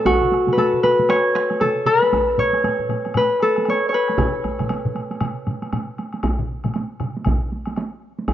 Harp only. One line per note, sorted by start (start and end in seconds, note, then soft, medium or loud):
0.00 0.58 A4 medium
0.00 0.52 B4 medium
0.00 0.96 C#5 medium
0.06 2.49 F#4 medium
0.53 0.83 B4 medium
0.58 1.60 A4 medium
0.83 1.86 B4 medium
1.09 2.39 C#5 medium
1.61 3.42 A4 medium
1.86 3.17 B4 medium
2.39 3.69 C#5 medium
3.17 3.94 B4 medium
3.42 5.62 A4 medium
3.70 3.89 C#5 medium
3.89 5.80 C#5 medium
3.94 5.99 B4 medium